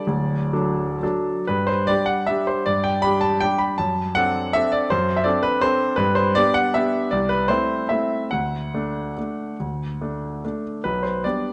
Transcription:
0.00 1.02 D5 medium
0.07 0.53 D1 medium
0.07 0.53 D2 medium
0.53 0.98 F#3 soft
0.53 0.98 D4 soft
0.53 0.98 A4 medium
1.03 1.44 F#3 soft
1.03 1.44 D4 soft
1.03 1.44 A4 soft
1.47 1.87 G2 medium
1.47 1.68 B4 medium
1.67 1.87 C5 medium
1.87 2.24 G3 soft
1.87 2.24 D4 soft
1.87 2.24 G4 soft
1.87 2.07 D5 medium
2.06 2.27 F#5 medium
2.27 2.62 G3 soft
2.27 2.62 D4 soft
2.27 2.63 G4 soft
2.27 2.46 E5 medium
2.47 2.66 C5 medium
2.66 3.02 G2 medium
2.66 2.84 D5 medium
2.84 3.03 G5 medium
3.02 3.38 G3 soft
3.02 3.38 D4 soft
3.02 3.38 G4 soft
3.02 3.21 B5 loud
3.21 3.40 A5 medium
3.41 3.75 G3 soft
3.41 3.75 D4 soft
3.41 3.76 G4 soft
3.41 3.60 G5 medium
3.58 3.78 B5 medium
3.78 4.15 F#2 medium
3.78 4.15 A5 medium
4.15 4.50 C4 soft
4.15 4.50 D4 soft
4.15 4.50 A4 medium
4.15 4.53 F#5 loud
4.53 4.87 C4 soft
4.53 4.87 D4 soft
4.53 4.88 A4 soft
4.53 4.72 E5 loud
4.72 4.90 D5 medium
4.90 5.25 F#2 medium
4.90 5.17 C5 medium
5.17 5.25 E5 medium
5.24 5.58 C4 medium
5.24 5.59 D4 soft
5.24 5.59 A4 medium
5.24 5.43 D5 medium
5.43 5.62 B4 medium
5.61 5.95 C4 medium
5.61 5.96 D4 soft
5.61 5.96 A4 medium
5.61 5.98 C5 loud
5.96 6.34 G2 medium
5.96 6.15 B4 medium
6.15 6.35 C5 medium
6.35 6.71 B3 medium
6.35 6.71 D4 medium
6.35 6.71 G4 medium
6.35 6.55 D5 loud
6.54 6.74 F#5 loud
6.74 7.09 B3 soft
6.74 7.09 D4 medium
6.74 7.09 G4 medium
6.74 7.12 E5 medium
7.11 7.48 C2 medium
7.11 7.30 D5 medium
7.29 7.49 B4 medium
7.48 7.85 A3 soft
7.48 7.86 C4 soft
7.48 7.86 E4 soft
7.48 7.89 C5 medium
7.89 8.28 A3 soft
7.89 8.29 C4 soft
7.89 8.29 E4 soft
7.89 8.32 E5 medium
8.31 8.73 D2 soft
8.31 10.64 F#5 medium
8.74 9.13 A3 soft
8.74 9.13 D4 soft
9.18 9.55 A3 soft
9.18 9.56 D4 soft
9.60 9.99 D2 soft
10.01 10.40 A3 soft
10.01 10.40 D4 soft
10.45 10.81 A3 soft
10.45 10.81 D4 soft
10.84 11.23 B1 soft
10.84 11.04 B4 medium
11.03 11.23 C5 medium
11.24 11.53 G3 soft
11.24 11.53 B3 soft
11.24 11.53 D4 soft
11.24 11.53 D5 medium

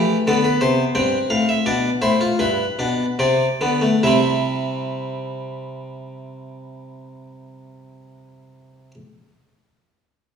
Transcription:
0.00 0.16 E3 medium
0.00 0.26 A3 medium
0.00 0.15 G4 medium
0.27 0.48 D3 medium
0.27 0.94 B3 medium
0.27 0.44 A4 loud
0.44 0.61 B4 medium
0.61 0.83 C3 medium
0.61 0.83 C5 medium
0.95 1.17 G2 medium
0.95 1.64 C4 medium
0.95 1.17 G5 medium
1.30 1.53 A2 medium
1.30 1.48 F5 medium
1.49 1.66 E5 medium
1.66 1.89 B2 medium
1.66 1.89 D4 medium
1.66 1.89 D5 medium
2.02 2.25 A2 medium
2.02 2.20 E4 medium
2.02 2.25 C5 medium
2.21 2.39 F4 medium
2.39 2.63 G2 medium
2.39 2.64 E4 medium
2.39 3.16 B4 medium
2.79 3.04 B2 medium
2.79 3.04 D4 medium
3.19 3.45 C3 medium
3.19 3.45 C4 medium
3.19 4.01 D5 medium
3.61 3.87 D3 medium
3.61 3.81 B3 medium
3.81 4.02 A3 medium
4.03 8.91 C3 medium
4.03 8.94 G3 medium
4.03 8.94 C4 medium
4.03 8.91 E4 medium
4.03 8.91 E5 medium

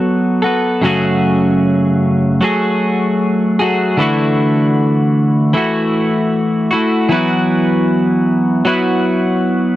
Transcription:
0.00 0.84 F#3 soft
0.00 0.43 B3 soft
0.00 0.44 F#4 medium
0.00 0.42 A4 medium
0.42 0.84 B3 soft
0.42 0.83 F#4 soft
0.42 0.82 A4 soft
0.82 2.41 F#2 medium
0.82 2.42 C#3 medium
0.82 2.40 F#3 medium
0.82 2.42 A3 medium
0.86 2.43 F#4 medium
0.86 2.43 G#4 medium
2.41 3.62 F#3 soft
2.41 3.61 A3 medium
2.41 3.60 F#4 medium
2.41 3.58 G#4 medium
3.59 3.98 F#3 soft
3.59 3.99 A3 soft
3.59 3.99 F#4 soft
3.59 3.98 G#4 soft
3.97 5.53 D3 medium
3.97 5.53 E3 medium
3.97 5.53 A3 medium
3.97 5.56 E4 medium
4.02 5.56 F#4 medium
5.53 6.74 E3 soft
5.53 6.71 A3 medium
5.53 6.72 E4 medium
5.53 6.70 F#4 medium
6.71 7.11 A3 soft
6.71 7.10 E4 soft
6.71 7.10 F#4 soft
7.09 8.65 E3 medium
7.09 8.65 F#3 medium
7.09 8.66 B3 medium
7.13 8.66 E4 medium
7.13 8.68 F#4 medium
8.65 9.76 F#3 medium
8.65 9.76 B3 medium
8.65 9.76 E4 medium
8.65 9.76 F#4 medium

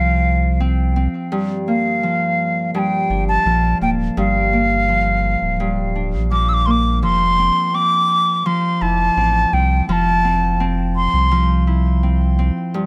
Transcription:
0.00 1.08 C2 medium
0.00 2.03 F3 medium
0.00 0.60 C4 medium
0.00 0.61 F5 medium
0.60 0.96 C4 medium
0.96 3.96 C4 medium
1.32 2.73 G2 medium
1.68 3.81 A#3 medium
1.68 2.71 F5 medium
2.03 3.46 F3 medium
2.74 4.16 G2 medium
2.74 2.80 A5 medium
2.79 3.25 G5 medium
3.10 3.39 G1 medium
3.10 5.94 D4 medium
3.29 3.78 A5 medium
3.46 3.75 A#1 medium
3.46 4.88 F3 medium
3.81 4.10 D1 medium
3.81 4.53 A#3 medium
3.81 3.90 G5 medium
4.17 5.37 G1 loud
4.17 5.59 G2 medium
4.17 6.01 F5 medium
4.53 6.67 A#3 medium
4.88 6.31 F3 medium
5.42 6.15 D1 medium
5.60 7.08 G2 medium
5.96 8.75 D4 medium
6.14 7.05 A#1 medium
6.31 7.02 F3 medium
6.31 6.50 D6 loud
6.49 6.55 E6 medium
6.54 6.67 D6 loud
6.66 9.89 A#3 medium
6.66 6.72 C6 medium
6.71 6.99 D6 loud
7.03 7.51 F1 medium
7.03 8.45 F3 medium
7.03 7.76 C6 loud
7.39 7.74 C4 medium
7.74 9.17 C4 medium
7.74 8.48 D6 loud
8.46 9.88 F3 medium
8.46 8.83 C6 medium
8.82 9.11 F1 medium
8.82 11.66 E4 medium
8.82 9.55 A5 medium
9.17 9.46 A1 medium
9.17 9.53 C4 medium
9.53 9.82 C2 medium
9.53 10.24 C4 medium
9.53 9.88 G5 medium
9.89 11.08 F1 medium
9.89 11.31 F3 medium
9.89 10.65 A5 loud
9.89 9.93 C6 medium
10.24 10.60 C4 medium
10.60 12.03 C4 medium
10.96 11.63 C6 medium
11.14 12.51 C2 medium
11.32 12.86 F3 medium
11.67 12.86 E4 medium
12.03 12.38 C4 medium
12.39 12.86 C4 medium
12.74 12.86 G2 medium

